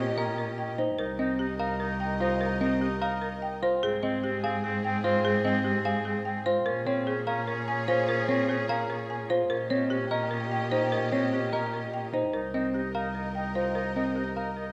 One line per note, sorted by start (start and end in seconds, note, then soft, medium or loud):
0.00 0.87 A#2 medium
0.00 0.12 C#4 medium
0.00 0.24 G4 medium
0.00 0.75 G4 medium
0.00 0.75 D#5 medium
0.18 0.32 C#4 soft
0.18 0.44 A#4 medium
0.18 0.44 D#5 medium
0.38 0.52 C#4 soft
0.38 0.64 A#4 medium
0.58 0.73 C#4 soft
0.58 0.85 G5 medium
0.78 1.05 D#4 medium
0.78 1.05 C5 medium
0.98 3.70 C2 medium
0.98 1.13 D#4 soft
0.98 1.25 A#4 medium
0.98 3.58 A#4 medium
0.98 3.58 D#5 medium
1.19 1.45 C4 medium
1.19 1.33 D#4 medium
1.19 1.45 D#5 medium
1.39 1.53 D#4 medium
1.39 1.66 G4 medium
1.59 1.74 D#4 medium
1.59 1.86 A#4 medium
1.59 1.86 F5 medium
1.80 1.94 D#4 medium
1.80 2.06 A#4 medium
2.00 2.14 D#4 medium
2.00 2.26 G5 medium
2.20 2.35 D#4 medium
2.20 2.47 F4 medium
2.20 2.47 C5 medium
2.41 2.55 D#4 medium
2.41 2.67 A#4 medium
2.61 2.87 C4 medium
2.61 2.75 D#4 medium
2.61 2.87 D#5 medium
2.81 2.96 D#4 medium
2.81 3.08 G4 medium
3.01 3.16 D#4 medium
3.01 3.28 A#4 medium
3.01 3.28 F5 medium
3.22 3.36 D#4 soft
3.22 3.48 A#4 medium
3.42 3.56 D#4 soft
3.42 3.68 G5 medium
3.62 3.89 F4 medium
3.62 3.89 C5 medium
3.82 6.54 G#2 medium
3.82 3.97 C4 soft
3.82 6.42 G#4 medium
3.82 4.09 G#4 medium
3.82 6.42 C5 medium
4.03 4.17 C4 soft
4.03 4.29 C4 medium
4.03 4.29 D#5 medium
4.23 4.37 C4 medium
4.23 4.50 G4 medium
4.43 4.58 C4 medium
4.43 4.70 G#4 medium
4.43 4.70 F5 medium
4.63 4.78 C4 medium
4.63 4.90 G#4 medium
4.84 4.98 C4 medium
4.84 5.10 G5 medium
5.04 5.18 C4 medium
5.04 5.31 F4 medium
5.04 5.31 C5 medium
5.24 5.39 C4 medium
5.24 5.51 G#4 medium
5.45 5.59 C4 medium
5.45 5.71 C4 medium
5.45 5.71 D#5 medium
5.64 5.79 C4 medium
5.64 5.91 G4 medium
5.85 5.99 C4 medium
5.85 6.12 G#4 medium
5.85 6.12 F5 loud
6.05 6.20 C4 medium
6.05 6.32 G#4 medium
6.25 6.40 C4 soft
6.25 6.52 G5 medium
6.46 6.72 F4 medium
6.46 6.72 C5 loud
6.66 9.38 A#2 medium
6.66 6.81 C#4 soft
6.66 9.26 G#4 medium
6.66 6.92 A#4 medium
6.66 9.26 C#5 medium
6.86 7.13 C4 medium
6.86 7.01 C#4 medium
6.86 7.13 C#5 medium
7.06 7.21 C#4 medium
7.06 7.33 G#4 medium
7.27 7.41 C#4 medium
7.27 7.53 A#4 medium
7.27 7.53 F5 medium
7.47 7.61 C#4 medium
7.47 7.74 A#4 medium
7.67 7.82 C#4 medium
7.67 7.94 G#5 medium
7.88 8.02 C#4 medium
7.88 8.14 F4 medium
7.88 8.14 C5 loud
8.08 8.22 C#4 medium
8.08 8.35 A#4 medium
8.28 8.55 C4 medium
8.28 8.43 C#4 medium
8.28 8.55 C#5 medium
8.49 8.63 C#4 medium
8.49 8.75 G#4 medium
8.69 8.83 C#4 medium
8.69 8.95 A#4 medium
8.69 8.96 F5 loud
8.90 9.04 C#4 medium
8.90 9.16 A#4 medium
9.10 9.24 C#4 soft
9.10 9.36 G#5 medium
9.30 9.56 F4 medium
9.30 9.56 C5 loud
9.50 12.22 A#2 medium
9.50 9.65 C#4 soft
9.50 12.09 G4 medium
9.50 9.76 A#4 medium
9.50 12.10 D#5 medium
9.70 9.97 C4 medium
9.70 9.85 C#4 medium
9.70 9.97 C#5 medium
9.90 10.05 C#4 medium
9.90 10.17 G4 medium
10.11 10.25 C#4 medium
10.11 10.37 A#4 medium
10.11 10.37 D#5 medium
10.31 10.46 C#4 medium
10.31 10.57 A#4 medium
10.52 10.66 C#4 medium
10.52 10.78 G5 medium
10.72 10.86 C#4 medium
10.72 10.98 D#4 medium
10.72 10.98 C5 medium
10.92 11.06 C#4 medium
10.92 11.18 A#4 medium
11.12 11.39 C4 medium
11.12 11.26 C#4 medium
11.12 11.39 C#5 medium
11.33 11.47 C#4 medium
11.33 11.59 G4 medium
11.53 11.67 C#4 medium
11.53 11.79 A#4 medium
11.53 11.79 D#5 medium
11.73 11.87 C#4 soft
11.73 12.00 A#4 medium
11.94 12.08 C#4 soft
11.94 12.20 G5 medium
12.14 12.40 D#4 medium
12.14 12.40 C5 medium
12.33 14.72 C2 medium
12.33 12.48 D#4 soft
12.33 12.60 A#4 medium
12.33 14.72 A#4 medium
12.33 14.72 D#5 medium
12.54 12.81 C4 medium
12.54 12.68 D#4 soft
12.54 12.81 D#5 medium
12.74 12.89 D#4 medium
12.74 13.01 G4 medium
12.95 13.09 D#4 medium
12.95 13.21 A#4 medium
12.95 13.21 F5 medium
13.15 13.29 D#4 medium
13.15 13.41 A#4 medium
13.35 13.50 D#4 medium
13.35 13.62 G5 medium
13.55 13.70 D#4 medium
13.55 13.82 F4 medium
13.55 13.82 C5 medium
13.75 13.90 D#4 medium
13.75 14.02 A#4 medium
13.96 14.22 C4 medium
13.96 14.10 D#4 medium
13.96 14.22 D#5 medium
14.16 14.31 D#4 medium
14.16 14.43 G4 medium
14.36 14.51 D#4 soft
14.36 14.63 A#4 soft
14.36 14.63 F5 medium
14.57 14.71 D#4 soft
14.57 14.72 A#4 soft